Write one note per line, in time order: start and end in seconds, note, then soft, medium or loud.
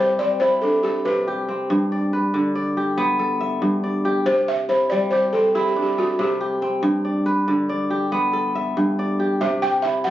0.00 1.04 C3 medium
0.00 1.74 G3 medium
0.00 0.41 E4 medium
0.00 1.27 G4 medium
0.00 0.20 C5 medium
0.19 1.48 C4 medium
0.19 0.29 D5 medium
0.40 1.98 E4 medium
0.40 0.62 C5 medium
0.61 2.31 D4 medium
0.61 0.84 A4 medium
0.83 1.06 G4 medium
0.83 2.16 A4 medium
1.05 1.74 C3 medium
1.05 1.50 B4 medium
1.27 2.69 G4 medium
1.49 2.19 C4 medium
1.70 3.61 G2 medium
1.92 2.55 D5 medium
2.13 3.36 B4 medium
2.34 4.31 D3 medium
2.55 3.66 D5 medium
2.77 4.05 G4 medium
2.98 4.32 B3 medium
3.19 4.51 A4 medium
3.40 4.44 E5 medium
3.62 4.31 G2 medium
3.84 4.94 D5 medium
4.05 5.12 G4 medium
4.26 6.18 C3 medium
4.26 4.48 C5 medium
4.48 4.70 E5 loud
4.69 5.55 E4 medium
4.69 4.89 C5 medium
4.90 6.89 G3 medium
4.90 5.12 D5 medium
5.11 6.40 G4 medium
5.11 5.34 C5 medium
5.33 6.62 C4 medium
5.33 5.53 A4 medium
5.55 7.12 E4 medium
5.55 5.66 G4 medium
5.68 5.81 G4 medium
5.76 7.44 D4 medium
5.82 5.98 G4 medium
5.98 6.08 F#4 medium
5.98 7.30 A4 medium
6.19 6.89 C3 medium
6.19 6.65 G4 medium
6.41 7.82 G4 medium
6.62 7.32 C4 medium
6.83 8.76 G2 medium
7.05 7.69 D5 medium
7.26 8.49 B4 medium
7.48 9.47 D3 medium
7.69 8.80 D5 medium
7.90 9.19 G4 medium
8.12 9.47 B3 medium
8.33 9.65 A4 medium
8.55 9.59 E5 medium
8.77 9.47 G2 medium
8.99 10.10 D5 medium
9.20 9.62 G4 medium
9.41 10.10 C3 medium
9.41 9.63 E5 medium
9.62 10.10 G4 medium
9.62 9.85 G5 loud
9.82 10.10 E4 medium
9.82 10.03 E5 medium
10.04 10.10 G3 medium
10.04 10.10 F#5 medium